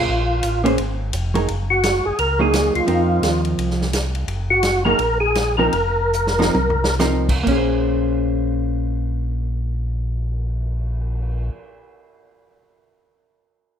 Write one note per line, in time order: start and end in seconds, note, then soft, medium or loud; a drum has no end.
0.00 0.62 F4 medium
0.08 0.42 A#1 medium
0.43 0.77 A1 medium
0.43 hi-hat pedal medium
0.43 ride medium
0.64 0.76 A#3 medium
0.64 0.77 C#4 medium
0.64 0.77 G#4 medium
0.64 0.77 C5 medium
0.64 ride medium
0.78 1.12 G#1 medium
0.78 ride medium
1.13 1.47 F1 loud
1.13 hi-hat pedal medium
1.13 ride medium
1.34 1.46 F#3 medium
1.34 1.47 D#4 medium
1.34 1.47 G#4 medium
1.34 1.47 A#4 medium
1.34 ride medium
1.48 2.02 F#1 medium
1.48 ride medium
1.70 2.06 F#4 loud
1.83 snare medium
1.83 hi-hat pedal medium
1.83 ride medium
2.05 2.12 F#1 soft
2.05 2.19 G#4 medium
2.18 2.71 C#2 medium
2.18 2.41 A#4 medium
2.18 ride medium
2.39 2.85 F#3 medium
2.39 2.85 A#3 medium
2.39 2.86 D#4 medium
2.39 2.86 G#4 medium
2.39 2.73 G#4 medium
2.53 snare medium
2.53 hi-hat pedal medium
2.53 ride medium
2.75 2.81 C#2 soft
2.75 3.41 F4 medium
2.75 ride soft
2.86 3.20 F2 medium
2.86 3.84 F3 medium
2.86 3.85 C4 medium
2.86 3.85 D#4 medium
2.86 3.85 A#4 medium
2.86 ride medium
3.22 3.55 D#2 medium
3.22 snare medium
3.22 hi-hat pedal medium
3.22 ride medium
3.45 ride soft
3.58 4.24 C2 medium
3.58 ride medium
3.70 snare soft
3.82 snare soft
3.93 snare medium
3.93 hi-hat pedal medium
3.93 ride medium
4.15 ride soft
4.28 4.95 F#1 medium
4.28 ride medium
4.50 4.83 F#4 medium
4.63 snare medium
4.63 hi-hat pedal medium
4.63 ride medium
4.85 4.97 F#3 medium
4.85 4.98 A#3 medium
4.85 4.98 D#4 medium
4.85 4.98 G#4 medium
4.85 5.18 A#4 loud
4.99 5.70 A#1 medium
4.99 ride medium
5.20 5.56 G#4 medium
5.35 snare medium
5.35 hi-hat pedal soft
5.35 ride medium
5.57 5.72 F3 medium
5.57 5.72 C4 medium
5.57 5.72 D#4 medium
5.57 6.95 A#4 medium
5.57 5.72 A#4 medium
5.73 6.51 F1 medium
5.73 ride medium
6.13 hi-hat pedal medium
6.27 snare medium
6.39 6.53 F3 medium
6.39 6.54 C4 medium
6.39 6.54 D#4 medium
6.39 6.54 A#4 medium
6.39 snare medium
6.54 7.43 C2 medium
6.54 high tom medium
6.70 floor tom medium
6.84 snare medium
6.99 7.26 F3 medium
6.99 7.27 C4 medium
6.99 7.26 D#4 medium
6.99 7.27 A#4 medium
6.99 snare medium
6.99 hi-hat pedal medium
7.29 kick medium
7.29 crash medium
7.43 11.50 A#1 medium
7.43 11.50 A#3 medium
7.43 kick medium
7.43 crash medium
7.48 11.55 C#4 medium
7.48 11.58 G#4 medium
7.55 11.62 C5 medium
7.79 cymbal swell soft